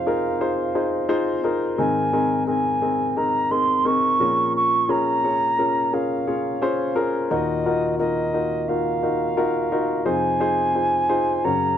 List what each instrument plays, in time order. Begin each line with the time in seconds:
Already playing: grand piano F2 C3 D#4 F4 G#4 C5, ocarina F5
0.06 grand piano D#4 F4 G#4 A#4
0.40 grand piano D#4 F4 G#4 C5
0.75 grand piano D#4 F4 G#4 C5
1.09 grand piano D#4 F4 G#4 C5
1.44 grand piano D#4 F4 G#4 A#4
1.78 grand piano G#2 D#3 C4 D#4 G#4 A#4, ocarina G#5
2.13 grand piano C4 D#4 G#4 A#4
2.47 grand piano C4 D#4 G#4 A#4, ocarina G#5
2.82 grand piano C4 D#4 G#4 A#4
3.17 grand piano C4 D#4 G#4 A#4, ocarina A#5
3.51 grand piano C4 D#4 G#4 A#4, ocarina C6
3.85 grand piano C4 D#4 G#4 A#4, ocarina C#6
4.20 grand piano A#2 F3 C#4 F4 G#4 A#4
4.56 ocarina C#6
4.88 grand piano C#4 F4 G#4 A#4, ocarina A#5
5.24 grand piano C#4 F4 G#4 C#5
5.59 grand piano C#4 F4 G#4 A#4
5.93 grand piano C#4 F4 G#4 A#4, ocarina F5
6.27 grand piano C#4 F4 G#4 C#5
6.62 grand piano C#4 F4 G#4 C5
6.95 grand piano C#4 F4 G#4 A#4
7.30 grand piano D#2 A#2 D#4 F4 F#4 A#4, ocarina D#5
7.66 grand piano D#4 F4 F#4 A#4
7.99 grand piano D#4 F4 F#4 A#4, ocarina D#5
8.34 grand piano D#4 F4 F#4 A#4
8.68 grand piano D#4 F4 F#4 A#4, ocarina F5
9.03 grand piano D#4 F4 F#4 A#4
9.37 grand piano D#4 F4 F#4 A#4
9.72 grand piano D#4 F4 F#4 A#4
10.05 grand piano F2 C3 D#4 F4 G#4 C5, ocarina G#5
10.40 grand piano D#4 F4 G#4 C5
10.75 grand piano D#4 F4 G#4 C5
11.09 grand piano D#4 F4 G#4 C5
11.44 grand piano F#2 C#3 C#4 F#4 A#4 C#5, ocarina A#5